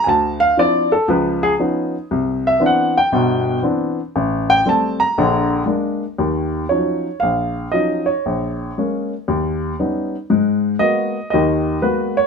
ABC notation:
X:1
M:4/4
L:1/8
Q:"Swing" 1/4=117
K:Bb
V:1 name="Grand piano"
[_a=a] f d A =B ^G z2 | z =e ^f g3 z2 | z g a b3 z2 | [K:Ebm] z2 d2 f2 e d- |
d3 z4 z | z2 e2 e2 c d |]
V:2 name="Grand piano" clef=bass
D,,2 [F,CD=E] z [^C,,^E,]2 [E,=B,^C^D] z | C,,2 [=E,=B,CD] z [G,,,=B,,]2 [E,B,CD] z | A,,,2 [G,A,C] z [B,,,D,]2 [_A,B,D] z | [K:Ebm] [E,,E,]2 [F,G,DE] z B,,,2 [F,G,DE] z |
B,,,2 [A,B,D] z E,,2 [=G,=B,DE] z | [A,,A,]2 [A,B,CG] z [E,,E,]2 [A,B,CG] z |]